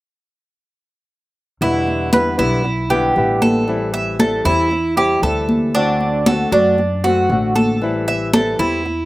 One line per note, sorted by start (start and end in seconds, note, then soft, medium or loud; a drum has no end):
1.61 2.35 E2 medium
1.61 2.12 B2 medium
1.61 2.11 D3 medium
1.61 2.12 G3 medium
1.61 2.12 B3 medium
1.61 2.12 E4 medium
1.61 2.13 E4 medium
1.61 high conga soft
1.87 high conga soft
2.12 2.37 D3 soft
2.12 2.38 G3 soft
2.12 2.38 B3 soft
2.12 2.37 E4 soft
2.12 2.38 B4 medium
2.12 high conga medium
2.38 3.12 B1 medium
2.38 2.63 D3 soft
2.38 2.63 G3 soft
2.38 2.64 B3 medium
2.38 2.63 E4 medium
2.38 2.89 E4 medium
2.38 high conga soft
2.64 muted nylon-string guitar stroke medium
2.64 high conga soft
2.90 3.15 D3 soft
2.90 3.15 G3 medium
2.90 3.15 B3 medium
2.90 3.15 E4 medium
2.90 3.40 G4 medium
2.90 high conga soft
3.16 4.39 A1 medium
3.16 3.67 D3 soft
3.16 3.67 G3 soft
3.16 3.67 B3 soft
3.16 3.68 E4 soft
3.16 high conga soft
3.42 3.92 A4 medium
3.42 high conga medium
3.67 4.18 E3 medium
3.67 4.19 G3 medium
3.67 4.19 C4 medium
3.67 4.19 E4 medium
3.67 high conga soft
3.94 4.19 E5 medium
3.94 high conga soft
4.19 4.44 E3 soft
4.19 4.45 G3 soft
4.19 4.45 C4 soft
4.19 4.44 E4 soft
4.19 4.45 A4 medium
4.19 high conga medium
4.45 5.19 E2 medium
4.45 4.71 G3 medium
4.45 4.71 C4 medium
4.45 4.70 E4 medium
4.45 4.96 E4 medium
4.45 high conga soft
4.71 muted nylon-string guitar stroke soft
4.71 high conga soft
4.97 5.22 G3 soft
4.97 5.22 C4 medium
4.97 5.22 E4 medium
4.97 5.22 G4 medium
4.97 high conga soft
5.22 6.45 D2 medium
5.22 5.74 E3 soft
5.22 5.74 G3 soft
5.22 5.74 C4 soft
5.22 5.75 E4 soft
5.22 5.73 A4 medium
5.22 high conga soft
5.49 high conga medium
5.74 6.25 D3 medium
5.74 6.26 A3 medium
5.74 6.26 C4 medium
5.74 6.25 D4 medium
5.74 6.26 F#4 medium
5.74 high conga soft
6.00 high conga soft
6.26 6.51 D3 soft
6.26 6.52 A3 soft
6.26 6.52 C4 soft
6.26 6.50 F#4 soft
6.26 6.52 A4 medium
6.26 high conga medium
6.52 7.26 F#2 medium
6.52 6.78 A3 soft
6.52 6.78 C4 medium
6.52 7.03 D4 medium
6.52 6.77 F#4 medium
6.52 high conga soft
6.78 muted nylon-string guitar stroke medium
6.78 high conga soft
7.04 7.30 A3 medium
7.04 7.30 C4 medium
7.04 7.29 F#4 medium
7.04 7.54 F#4 medium
7.04 high conga soft
7.30 8.53 A1 medium
7.30 7.81 D3 soft
7.30 7.81 A3 medium
7.30 7.82 C4 soft
7.30 7.82 F#4 medium
7.30 high conga soft
7.56 8.06 A4 medium
7.56 high conga medium
7.82 8.32 E3 medium
7.82 8.33 G3 medium
7.82 8.33 C4 medium
7.82 8.33 E4 medium
7.82 high conga soft
8.08 8.33 E5 medium
8.08 high conga soft
8.34 8.59 E3 soft
8.34 8.59 G3 soft
8.34 8.59 C4 soft
8.34 8.58 E4 soft
8.34 8.59 A4 medium
8.34 high conga medium
8.59 9.05 E2 medium
8.59 8.84 G3 soft
8.59 8.84 C4 medium
8.59 8.84 E4 medium
8.59 9.05 E4 medium
8.59 high conga soft
8.85 muted nylon-string guitar stroke medium
8.85 high conga soft